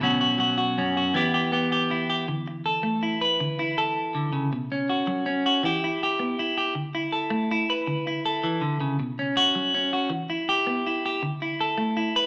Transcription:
0.01 B2 F#3 C#4 F#4
0.21 F#4
0.38 F#3 F#4
0.58 F#4
0.78 F#2 C#4
0.97 F#4
1.14 E3 B3 E4 G4
1.34 G4
1.52 B3 G4
1.72 G4
1.90 E4, muted clean electric guitar stroke
2.10 G4
2.28 D3
2.48 muted clean electric guitar stroke
2.66 A4
2.83 A3
3.03 E4
3.21 B4
3.40 D3
3.59 E4
3.78 A4
4.15 D3
4.33 C#3
4.53 B2
4.72 C#4
4.89 F#4
5.07 F#3
5.26 C#4
5.46 F#4
5.63 E3 E4 G4, muted clean electric guitar stroke
5.84 E4
6.03 G4
6.19 B3
6.39 E4
6.58 G4
6.75 D3
6.95 E4
7.12 A4
7.30 A3
7.51 E4
7.70 B4
7.87 D3
8.07 E4
8.26 A4
8.44 E3
8.61 D3
8.80 C#3
9.00 B2
9.19 C#4
9.37 F#4
9.55 F#3
9.74 C#4
9.93 F#4
10.10 E3
10.30 E4
10.49 G4
10.67 B3
10.87 E4
11.06 G4
11.23 D3
11.42 E4
11.61 A4
11.78 A3
11.97 E4
12.16 B4

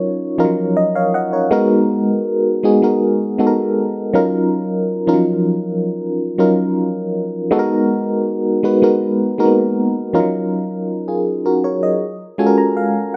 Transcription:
Already playing: F#3 C#4 D#4 F4 A#4 C#5
0.38 F3 C#4 D#4 F4 A#4
0.45 F#3
0.77 D#5
0.95 C#5 F5
1.14 D#5 F#5
1.33 A#4 C#5
1.51 G#3 B3 D#4 F#4 A#4
2.63 G#3 B3 D#4 F#4 G#4
2.82 G#3 B3 D#4 F#4 A#4
3.38 G#3 B3 D#4 F#4 A4
3.47 A#4
4.14 F#3 C#4 D#4 F4 A#4
5.07 F3 C#4 D#4 F4 A#4
5.14 F#3
6.38 F#3 C#4 D#4 F4 A#4
7.51 G#3 B3 D#4 F#4 A4
7.59 A#4
8.63 G#3 B3 D#4 F#4 B4
8.82 G#3 B3 D#4 F#4 A#4
9.38 G#3 A#3 D#4 F#4 A#4
9.45 B3
10.13 F3 C#4 D#4 F4 A#4
10.20 F#3
11.08 F4 G#4
11.46 F#4 A#4
11.64 A#4 C#5
11.83 D#5
12.38 G#3 C#4 F4 F#4 A4 G#5
12.47 A#4
12.58 A#5
12.77 F5

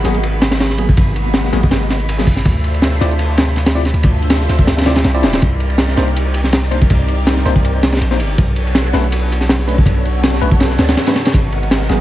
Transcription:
Already playing: G#3 A#3 B3 D#4 F#4 B5
0.04 G#1 F#3 A#3 B3 G#4, snare, ride
0.14 ride
0.23 ride
0.42 snare, ride
0.51 snare, ride
0.60 snare, ride
0.70 snare
0.78 F#3 A#3 B3 G#4, ride
0.89 kick
0.97 G#1 G#3 A#3 B3 D#4 F#4, kick, ride
1.16 ride
1.34 snare, ride
1.44 snare
1.53 G#1 F#3 A#3 B3 G#4, snare, ride
1.63 kick
1.71 snare, ride
1.81 snare
1.90 snare, ride
2.00 ride
2.09 ride
2.18 F#3 A#3 B3 G#4, snare
2.27 kick, open hi-hat
2.36 snare
2.45 D2 D4 F4 A4 C5 E5, kick, ride
2.64 ride
2.74 ride
2.82 snare, ride
2.92 snare
3.01 D2 C4 E4 F4 D5, snare, ride
3.11 ride
3.19 ride
3.37 snare, ride
3.47 snare
3.56 snare, ride
3.66 snare, ride
3.75 C4 E4 F4 D5, snare
3.85 snare, ride
3.94 D2 D4 F4 A4 C5 E5, ride
4.03 kick, ride
4.22 ride
4.30 snare, ride
4.41 snare
4.49 D2, snare, ride
4.59 kick
4.67 snare, ride
4.78 snare, ride
4.81 snare, ride
4.86 C4 E4 F4 D5, snare, ride
4.96 snare, ride
5.04 C2, snare, ride
5.14 C4 E4 F4 D5, ride
5.23 D1, snare, ride
5.33 snare, ride
5.42 C2 C4 D#4 G4 A#4 D5, kick, ride
5.60 ride
5.70 ride
5.78 snare, ride
5.88 snare
5.97 C2 A#3 D4 D#4 C5, snare, ride
6.08 ride
6.16 ride
6.34 ride
6.44 snare
6.52 snare, ride
6.63 snare
6.71 A#3 D4 D#4 C5, ride
6.82 kick
6.90 C2 C4 D#4 G4 A#4 D5, kick, ride
7.08 ride
7.27 snare, ride
7.37 snare
7.45 C2 A#3 D4 D#4 C5, snare, ride
7.56 kick
7.65 ride
7.83 snare, ride
7.92 snare, ride
7.97 snare, ride
8.01 A#1, ride
8.11 A#3 D4 D#4 C5, snare
8.20 G1, ride
8.38 B1 B3 D4 F#4 A4 C#5, kick, ride
8.56 ride
8.67 ride
8.75 snare, ride
8.85 snare
8.93 B1 A3 C#4 D4 B4, snare, ride
9.04 ride
9.12 ride
9.32 ride
9.41 snare
9.49 snare, ride
9.59 snare
9.68 A3 C#4 D4 B4, ride
9.78 kick
9.86 B1 B3 D4 F#4 A4 C#5, kick, ride
10.05 ride
10.23 snare, ride
10.33 snare
10.42 B1 A3 C#4 D4 B4, ride
10.51 kick
10.60 snare, ride
10.70 snare
10.78 D2, snare, ride
10.88 snare, ride
10.97 snare, ride
11.07 A3 C#4 D4 B4, snare, ride
11.16 snare, ride
11.25 snare, ride
11.34 G#1 G#3 B3 D#4 F#4 A#4, kick, ride
11.52 ride
11.63 ride
11.71 snare, ride
11.82 snare
11.89 G#1 F#3 A#3 B3 G#4, snare, ride

